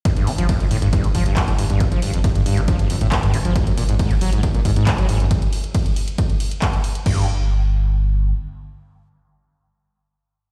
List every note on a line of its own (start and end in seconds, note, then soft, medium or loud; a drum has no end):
0.05 0.11 G2 loud
0.05 kick loud
0.05 closed hi-hat medium
0.05 ride medium
0.16 0.29 G2 loud
0.16 closed hi-hat medium
0.27 0.38 G1 loud
0.27 0.31 D3 medium
0.27 open hi-hat loud
0.38 0.49 G1 medium
0.38 0.47 F3 medium
0.38 closed hi-hat medium
0.49 0.58 G2 medium
0.49 kick loud
0.49 closed hi-hat medium
0.49 ride medium
0.60 0.70 G1 medium
0.60 0.66 F2 medium
0.60 closed hi-hat medium
0.71 0.82 G1 loud
0.71 0.77 A2 loud
0.71 open hi-hat loud
0.82 0.93 G1 medium
0.82 0.88 G2 loud
0.82 closed hi-hat medium
0.93 1.06 G2 loud
0.93 kick loud
0.93 closed hi-hat medium
0.93 ride medium
1.04 1.08 D3 medium
1.04 closed hi-hat medium
1.15 1.25 G1 medium
1.15 1.24 F3 medium
1.15 kick medium
1.15 open hi-hat loud
1.26 1.36 G1 medium
1.26 1.35 G2 medium
1.26 closed hi-hat medium
1.37 1.43 F2 medium
1.37 kick loud
1.37 clap loud
1.37 closed hi-hat medium
1.37 ride medium
1.48 1.58 G1 medium
1.48 1.54 A2 loud
1.48 closed hi-hat medium
1.58 1.69 G1 loud
1.58 1.65 G2 medium
1.58 open hi-hat loud
1.70 1.80 G1 medium
1.70 1.82 G2 loud
1.70 closed hi-hat medium
1.80 1.84 D3 medium
1.80 kick loud
1.80 closed hi-hat medium
1.80 ride medium
1.92 2.00 F3 medium
1.92 closed hi-hat medium
2.02 2.13 G1 loud
2.02 2.12 G2 medium
2.02 open hi-hat loud
2.13 2.24 G1 medium
2.13 2.19 F2 medium
2.13 closed hi-hat medium
2.24 2.30 A2 loud
2.24 kick loud
2.24 closed hi-hat medium
2.24 ride medium
2.35 2.45 G1 medium
2.35 2.41 G2 loud
2.35 closed hi-hat medium
2.46 2.57 G1 loud
2.46 2.59 G2 loud
2.46 open hi-hat loud
2.57 2.68 G1 medium
2.57 2.61 D3 medium
2.57 closed hi-hat medium
2.68 2.77 F3 medium
2.68 kick loud
2.68 closed hi-hat medium
2.68 ride medium
2.79 2.88 G2 medium
2.79 closed hi-hat medium
2.90 3.01 G1 loud
2.90 2.96 F2 medium
2.90 open hi-hat loud
3.01 3.12 G1 medium
3.01 3.07 A2 loud
3.01 closed hi-hat medium
3.12 3.18 G2 loud
3.12 kick loud
3.12 clap loud
3.12 closed hi-hat medium
3.12 ride medium
3.23 3.33 G1 medium
3.23 3.35 G2 loud
3.23 closed hi-hat medium
3.34 3.44 G1 loud
3.34 3.37 D3 medium
3.34 open hi-hat loud
3.45 3.55 G1 medium
3.45 3.54 F3 medium
3.45 closed hi-hat medium
3.56 3.65 G#2 medium
3.56 kick loud
3.56 closed hi-hat medium
3.56 ride medium
3.67 3.73 F#2 medium
3.67 closed hi-hat medium
3.77 3.88 G#1 loud
3.77 3.84 A#2 loud
3.77 open hi-hat loud
3.89 3.99 G#1 medium
3.89 3.95 G#2 loud
3.89 closed hi-hat medium
3.99 4.12 G#2 loud
3.99 kick loud
3.99 closed hi-hat medium
3.99 ride medium
4.11 4.21 G#1 medium
4.11 4.14 D#3 medium
4.11 closed hi-hat medium
4.21 4.32 G#1 loud
4.21 4.31 F#3 medium
4.21 open hi-hat loud
4.33 4.43 G#1 medium
4.33 4.41 G#2 medium
4.33 closed hi-hat medium
4.43 4.49 F#2 medium
4.43 kick loud
4.43 closed hi-hat medium
4.43 ride medium
4.54 4.60 A#2 loud
4.54 closed hi-hat medium
4.65 4.76 G#1 medium
4.65 4.71 G#2 loud
4.65 kick medium
4.65 open hi-hat loud
4.76 4.87 G#1 medium
4.76 4.89 G#2 loud
4.76 closed hi-hat medium
4.87 4.91 D#3 medium
4.87 kick loud
4.87 clap loud
4.87 closed hi-hat medium
4.87 ride medium
4.98 5.08 G#1 medium
4.98 5.07 F#3 medium
4.98 closed hi-hat medium
5.09 5.20 G#1 loud
5.09 5.18 G#2 medium
5.09 open hi-hat loud
5.20 5.31 G#1 medium
5.20 5.26 F#2 medium
5.20 closed hi-hat medium
5.31 kick loud
5.31 closed hi-hat medium
5.31 ride medium
5.42 closed hi-hat medium
5.53 open hi-hat loud
5.64 closed hi-hat medium
5.75 kick loud
5.75 closed hi-hat medium
5.75 ride medium
5.86 closed hi-hat medium
5.96 open hi-hat loud
6.08 closed hi-hat medium
6.18 kick loud
6.18 closed hi-hat medium
6.18 ride medium
6.30 closed hi-hat medium
6.40 open hi-hat loud
6.51 closed hi-hat medium
6.62 kick loud
6.62 clap loud
6.62 closed hi-hat medium
6.62 ride medium
6.73 closed hi-hat medium
6.84 open hi-hat loud
6.95 closed hi-hat medium
7.06 8.33 G1 loud
7.06 7.26 G2 loud
7.06 kick loud
7.06 crash medium